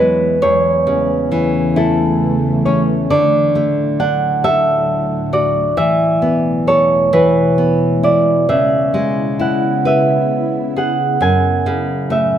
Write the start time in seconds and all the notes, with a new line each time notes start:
Already playing: E2 E3 F#3 G#3 B3 B4 C#5
0.42 E2 C#3 E3 A3 C#5
0.87 C#3
1.32 E3
1.76 E4 A4
2.65 C#4 C#5
3.10 D2 A2 D3 F#3 D5
3.55 A3
4.00 D4 F#5
4.44 A4 E5
5.33 F#4 D5
5.77 E2 E3 E5
6.22 B3
6.67 A4 C#5
7.13 E3 B4
7.58 B3
8.03 E4 D5
8.49 C#3 B3 E4 E5
8.94 G#3
9.39 E4 F#5
9.85 B4 E5
10.76 G#4 F#5
11.21 F#2 A2 F#3 G#5
11.66 C#3
12.10 A3 E5